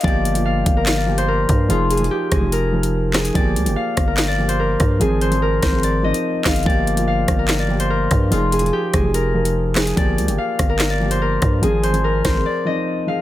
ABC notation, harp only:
X:1
M:4/4
L:1/16
Q:1/4=145
K:Gphr
V:1 name="Harp"
d4 f3 B2 d2 c B4 | F2 A2 G2 A2 B6 A2 | d4 f3 B2 d2 c B4 | A2 c2 B2 c2 d2 e4 f2 |
d4 f3 B2 d2 c B4 | F2 A2 G2 A2 B6 A2 | d4 f3 B2 d2 c B4 | A2 c2 B2 c2 d2 e4 f2 |]